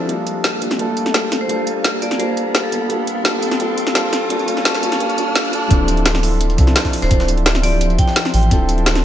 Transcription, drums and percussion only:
0.09 closed hi-hat
0.27 closed hi-hat, tambourine
0.44 snare, closed hi-hat
0.62 closed hi-hat, tambourine
0.71 snare, closed hi-hat
0.79 closed hi-hat
0.97 closed hi-hat, tambourine
1.06 snare
1.14 snare, closed hi-hat
1.32 snare, closed hi-hat, tambourine
1.49 closed hi-hat
1.67 closed hi-hat, tambourine
1.84 snare, closed hi-hat
2.02 closed hi-hat, tambourine
2.11 snare, closed hi-hat
2.19 closed hi-hat
2.37 closed hi-hat, tambourine
2.55 snare, closed hi-hat
2.72 closed hi-hat, tambourine
2.90 closed hi-hat
3.07 closed hi-hat, tambourine
3.25 snare, closed hi-hat
3.42 closed hi-hat, tambourine
3.51 snare, closed hi-hat
3.60 closed hi-hat
3.78 closed hi-hat, tambourine
3.87 snare
3.95 snare, closed hi-hat
4.13 snare, closed hi-hat, tambourine
4.30 closed hi-hat
4.39 tambourine
4.48 closed hi-hat, tambourine
4.57 snare
4.65 snare, closed hi-hat
4.74 snare, closed hi-hat, tambourine
4.83 closed hi-hat, tambourine
4.92 snare, closed hi-hat
5.00 closed hi-hat
5.10 closed hi-hat, tambourine
5.18 closed hi-hat, tambourine
5.35 snare, closed hi-hat
5.45 tambourine
5.53 closed hi-hat, tambourine
5.71 kick, closed hi-hat
5.88 closed hi-hat, tambourine
5.97 closed hi-hat
6.06 snare, closed hi-hat
6.15 snare
6.23 closed hi-hat, open hi-hat, tambourine
6.41 closed hi-hat
6.50 closed hi-hat
6.58 kick, closed hi-hat, tambourine
6.67 snare
6.76 snare, closed hi-hat, open hi-hat
6.85 kick, snare
6.93 closed hi-hat, open hi-hat, tambourine
7.02 snare, closed hi-hat
7.11 kick, closed hi-hat
7.20 snare
7.28 closed hi-hat, tambourine
7.37 closed hi-hat
7.46 snare, closed hi-hat
7.55 snare, closed hi-hat
7.63 closed hi-hat, open hi-hat, tambourine
7.81 closed hi-hat
7.90 closed hi-hat
7.99 kick, closed hi-hat, tambourine
8.08 snare
8.16 snare, closed hi-hat
8.25 snare
8.34 closed hi-hat, open hi-hat, tambourine
8.43 closed hi-hat
8.51 kick, closed hi-hat
8.69 closed hi-hat, tambourine
8.78 closed hi-hat
8.86 snare, closed hi-hat
8.95 snare

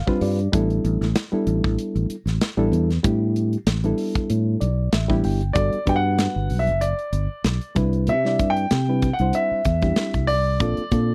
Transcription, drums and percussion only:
0.07 kick
0.21 open hi-hat
0.39 closed hi-hat
0.53 kick, closed hi-hat
0.70 closed hi-hat
0.85 closed hi-hat
1.02 snare, closed hi-hat
1.15 snare, closed hi-hat
1.47 closed hi-hat
1.64 kick
1.79 closed hi-hat
1.96 closed hi-hat
2.10 closed hi-hat
2.27 snare, closed hi-hat
2.41 snare, closed hi-hat
2.73 closed hi-hat
2.90 snare, closed hi-hat
3.04 kick, closed hi-hat
3.36 closed hi-hat
3.53 closed hi-hat
3.67 snare, closed hi-hat
3.84 closed hi-hat
3.98 open hi-hat
4.15 kick, closed hi-hat
4.30 closed hi-hat
4.61 closed hi-hat
4.92 snare, closed hi-hat
5.10 kick
5.24 open hi-hat
5.41 closed hi-hat
5.55 kick, closed hi-hat
5.73 closed hi-hat
5.87 kick, closed hi-hat
6.18 snare, closed hi-hat
6.50 open hi-hat
6.67 closed hi-hat
6.81 closed hi-hat
6.99 closed hi-hat
7.13 closed hi-hat
7.44 snare, closed hi-hat
7.61 closed hi-hat
7.76 kick, closed hi-hat
7.93 closed hi-hat
8.07 closed hi-hat
8.25 snare
8.39 kick, closed hi-hat
8.57 closed hi-hat
8.71 snare, closed hi-hat
9.02 kick, closed hi-hat
9.19 closed hi-hat
9.33 closed hi-hat
9.65 kick, closed hi-hat
9.82 kick, closed hi-hat
9.96 snare, closed hi-hat
10.14 kick, closed hi-hat
10.28 open hi-hat
10.60 kick, closed hi-hat
10.77 closed hi-hat
10.91 kick, closed hi-hat

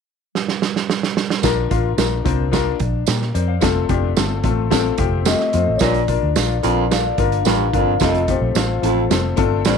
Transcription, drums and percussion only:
0.35 snare
0.48 snare
0.62 snare
0.76 snare
0.90 snare
1.03 snare
1.17 snare
1.30 snare
1.43 kick, snare, closed hi-hat, tambourine
1.71 kick, closed hi-hat
1.98 snare, closed hi-hat, tambourine
2.26 kick, closed hi-hat
2.53 kick, snare, closed hi-hat, tambourine
2.80 kick, closed hi-hat
3.07 snare, closed hi-hat, tambourine
3.22 snare
3.35 closed hi-hat
3.61 kick, snare, closed hi-hat, tambourine
3.89 kick, closed hi-hat
4.17 snare, closed hi-hat, tambourine
4.44 kick, closed hi-hat
4.71 kick, snare, closed hi-hat, tambourine
4.98 kick, closed hi-hat
5.25 snare, closed hi-hat, tambourine
5.40 snare
5.53 closed hi-hat
5.79 kick, snare, closed hi-hat, tambourine
5.94 closed hi-hat
6.08 kick, closed hi-hat
6.36 snare, closed hi-hat, tambourine
6.63 closed hi-hat
6.91 snare, closed hi-hat, tambourine
7.18 kick, closed hi-hat
7.32 closed hi-hat
7.45 snare, closed hi-hat, tambourine
7.73 kick, closed hi-hat
8.00 kick, snare, closed hi-hat, tambourine
8.14 closed hi-hat
8.28 kick, closed hi-hat
8.55 snare, closed hi-hat, tambourine
8.83 closed hi-hat
9.11 snare, closed hi-hat, tambourine
9.37 kick, closed hi-hat
9.65 snare, closed hi-hat, tambourine

